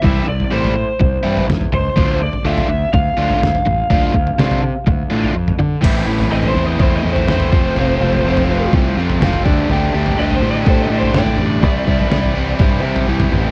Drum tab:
CC |----------------|----------------|----------------|x---------------|
SD |------------o---|------------o---|----o-----------|------------o---|
T2 |------------o-o-|------------o-o-|-------------oo-|------------o-o-|
FT |o--o-o--o--o-o--|o--o-o--o--o-o--|o--o-o--o--o-o--|o--o-o--o--o-o--|
BD |o-------o-------|o-------o-------|o-o-----o-------|o-------o-----o-|

CC |----------------|----------------|----------------|
SD |------------o---|------------o---|----o-----------|
T2 |------------o-o-|------------o-o-|-------------oo-|
FT |o--o-o--o--o-o--|o--o-o--o--o-o--|o--o-o--o--o-o--|
BD |--------o-----o-|--------o-------|o-o-----o-------|